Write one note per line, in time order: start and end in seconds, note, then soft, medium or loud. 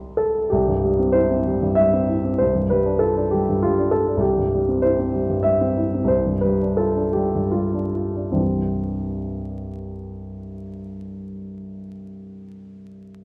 0.00 0.42 C2 soft
0.00 0.46 G3 soft
0.00 0.46 C4 soft
0.00 0.47 E4 soft
0.00 0.54 B5 medium
0.00 0.18 C6 soft
0.17 0.50 A4 medium
0.50 2.37 C2 soft
0.50 1.15 G4 soft
0.68 0.93 G2 soft
0.84 1.09 G3 soft
0.99 1.25 C4 soft
1.12 1.40 E4 soft
1.12 1.77 C5 medium
1.31 1.56 C4 soft
1.46 1.72 G3 soft
1.62 1.88 G2 soft
1.75 2.03 G3 soft
1.75 2.39 E5 medium
1.93 2.19 C4 soft
2.09 2.34 E4 soft
2.24 2.40 C4 soft
2.38 4.16 C2 soft
2.38 2.70 C5 medium
2.55 2.80 G2 soft
2.70 2.96 G3 soft
2.70 3.01 B4 medium
2.85 3.10 D4 soft
2.99 3.26 F4 soft
2.99 3.31 A4 medium
3.17 3.42 D4 soft
3.31 3.58 G3 soft
3.31 3.63 G4 medium
3.49 3.73 G2 soft
3.63 3.88 G3 soft
3.63 3.92 F4 medium
3.79 4.02 D4 soft
3.91 4.16 F4 soft
3.91 4.21 A4 medium
4.08 4.22 D4 soft
4.17 6.03 C2 soft
4.17 4.81 G4 soft
4.38 4.61 G2 soft
4.54 4.77 G3 soft
4.68 4.92 C4 soft
4.82 5.08 E4 soft
4.82 5.45 C5 medium
4.99 5.23 C4 soft
5.14 5.39 G3 soft
5.30 5.55 G2 soft
5.43 5.70 G3 soft
5.43 6.08 E5 medium
5.61 5.87 C4 soft
5.78 6.03 E4 soft
5.95 6.10 C4 soft
6.04 8.29 C2 soft
6.04 6.42 C5 medium
6.27 6.54 G2 soft
6.41 6.71 G3 soft
6.41 6.77 B4 soft
6.62 6.90 D4 soft
6.77 7.08 F4 soft
6.77 7.15 A4 medium
6.97 7.27 D4 soft
7.13 7.47 G3 soft
7.13 7.53 G4 soft
7.35 7.67 G2 soft
7.52 7.88 G3 soft
7.52 7.94 F4 soft
7.74 8.09 D4 soft
7.95 8.28 F4 soft
8.16 8.35 D4 soft
8.32 12.60 C2 soft
8.32 12.60 G2 soft
8.32 12.61 E3 soft
8.32 12.61 G3 soft
8.32 12.59 C4 soft